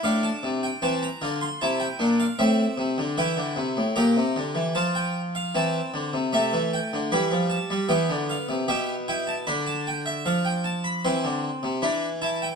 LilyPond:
<<
  \new Staff \with { instrumentName = "Harpsichord" } { \time 4/4 \key f \major \tempo 4 = 76 << { f''16 a''8 g''16 a''16 bes''8 c'''16 a''16 g''8 f''16 e''4 | g''4 bes''4 a''16 g''8 f''16 a''4 | \key c \major e''8 g''8 b''8 a''8 g''8 f''8 e''8 g''16 a''16 | b''16 a''16 g''16 e''16 f''16 g''16 a''16 b''16 c'''4 b''8 a''16 g''16 | } \\ { d'4 c'8 f'8 e'8 d'8 c'4 | e'4 g'4 f'4 c'4 | a4 g4 b4 g'8 e'8 | d'2 c'4 d'8 e'8 | } >> }
  \new Staff \with { instrumentName = "Harpsichord" } { \clef bass \time 4/4 \key f \major a,8 c8 e8 d8 c8 bes,8 a,8 c16 d16 | e16 d16 c16 a,16 bes,16 c16 d16 e16 f4 e8 d16 c16 | \key c \major c16 e8 d16 e16 f8 g16 e16 d8 c16 b,4 | d4 f4 e16 d8 c16 e4 | }
>>